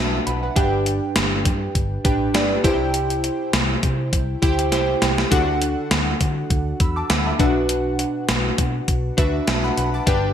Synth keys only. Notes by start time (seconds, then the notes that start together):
Already playing: D4 F#4 B4 E5 F#5 A5
0.27 F#5 B5
0.43 B4 F#5
0.56 G2 D4 G4 B4 G5
2.04 D4 G4 B4 G5
2.34 D4 G4 B4 D5
2.64 C3 E4 G4 C5 G5
4.42 E4 G4 C5 G5
4.72 E4 G4 C5 G5
5.31 D3 D4 F#4 A4 F#5
6.80 B5 E6
6.96 A5 D6
7.10 F#5 B5
7.26 E5 A5
7.39 B2 D4 F#4 B4 F#5
9.17 D4 F#4 B4 E5
9.47 E5 A5
9.64 F#5 B5
9.77 F#5 B5
9.94 A5 D6
10.07 G2 D4 G4 B4 G5